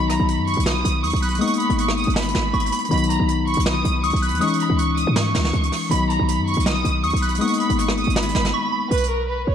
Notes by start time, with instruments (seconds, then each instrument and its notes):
Already playing: 808-style bass B1, tine electric piano D#3 F#3 B3 D#4, synth bell B5
0.10 violin section A#5, cross-stick, closed hi-hat
0.20 808-style bass B1
0.28 violin section B5, closed hi-hat
0.38 808-style bass F#2
0.47 violin section C#6, closed hi-hat
0.53 808-style bass B1, closed hi-hat
0.60 closed hi-hat
0.66 violin section D#6, snare
0.85 808-style bass B1, closed hi-hat
1.04 808-style bass D#2, violin section C#6, synth bell D#6, closed hi-hat
1.10 808-style bass B1, closed hi-hat
1.16 closed hi-hat
1.22 violin section B5, synth bell F#6, closed hi-hat
1.28 closed hi-hat
1.35 tine electric piano G#3, closed hi-hat
1.40 tine electric piano A#3 B3 D#4, violin section C#6, synth bell D#6, closed hi-hat
1.47 closed hi-hat
1.53 closed hi-hat
1.60 violin section B5, closed hi-hat
1.70 808-style bass G#1, closed hi-hat
1.79 violin section C#6, closed hi-hat
1.88 cross-stick
1.97 violin section D#6, closed hi-hat
2.04 808-style bass G#1, closed hi-hat
2.10 closed hi-hat
2.16 violin section B5, snare
2.22 closed hi-hat
2.28 closed hi-hat
2.35 808-style bass G#1, snare
2.53 808-style bass G#1, synth bell C#6, closed hi-hat
2.60 closed hi-hat
2.66 closed hi-hat
2.72 synth bell B5, closed hi-hat, open hi-hat
2.78 closed hi-hat
2.85 closed hi-hat
2.89 808-style bass B1, tine electric piano D#3 F#3 B3 D#4, synth bell B5, violin section B5, closed hi-hat
2.97 closed hi-hat
3.03 closed hi-hat
3.10 violin section A#5, closed hi-hat
3.20 808-style bass B1
3.29 violin section B5, closed hi-hat
3.47 violin section C#6, closed hi-hat
3.54 808-style bass B1, closed hi-hat
3.60 closed hi-hat
3.66 violin section D#6, snare
3.85 808-style bass B1, closed hi-hat
4.03 808-style bass C#2, violin section C#6, synth bell D#6, closed hi-hat
4.10 808-style bass B1, closed hi-hat
4.16 closed hi-hat
4.22 violin section B5, synth bell F#6, closed hi-hat
4.28 808-style bass D#2, closed hi-hat
4.35 closed hi-hat
4.39 tine electric piano E3 G#3 C#4 D#4, violin section C#6, synth bell D#6, closed hi-hat
4.47 closed hi-hat
4.54 closed hi-hat
4.60 violin section B5, closed hi-hat
4.70 808-style bass C#2
4.79 violin section C#6, closed hi-hat
4.97 violin section D#6, closed hi-hat
5.07 808-style bass G#2
5.16 violin section C#6, snare
5.35 808-style bass C#2, snare
5.45 snare
5.53 808-style bass C#2, closed hi-hat
5.63 closed hi-hat
5.72 cross-stick, open hi-hat
5.89 808-style bass B1, tine electric piano D#3 F#3 B3 D#4, violin section B5, synth bell B5, closed hi-hat
6.10 violin section A#5, closed hi-hat
6.20 808-style bass B1
6.28 violin section B5, closed hi-hat
6.38 808-style bass F#2
6.47 violin section C#6, closed hi-hat
6.54 808-style bass B1, closed hi-hat
6.60 closed hi-hat
6.66 violin section D#6, snare
6.85 808-style bass B1, closed hi-hat
7.03 808-style bass D#2, violin section C#6, synth bell D#6, closed hi-hat
7.10 808-style bass B1, closed hi-hat
7.16 closed hi-hat
7.22 violin section B5, synth bell F#6, closed hi-hat
7.28 closed hi-hat
7.35 tine electric piano G#3, closed hi-hat
7.40 tine electric piano A#3 B3 D#4, violin section C#6, synth bell D#6, closed hi-hat
7.47 closed hi-hat
7.54 closed hi-hat
7.60 violin section B5, closed hi-hat
7.70 808-style bass G#1, closed hi-hat
7.79 violin section C#6, closed hi-hat
7.89 cross-stick
7.97 violin section D#6, closed hi-hat
8.04 808-style bass G#1, closed hi-hat
8.10 closed hi-hat
8.16 violin section B5, snare
8.22 closed hi-hat
8.29 closed hi-hat
8.35 808-style bass G#1, snare
8.45 snare
8.54 synth bell C#6
8.72 synth bell B5
8.91 808-style bass B1, violin section B4, closed hi-hat
8.97 closed hi-hat
9.04 closed hi-hat
9.10 violin section A#4
9.28 violin section B4
9.47 808-style bass B1, violin section C#5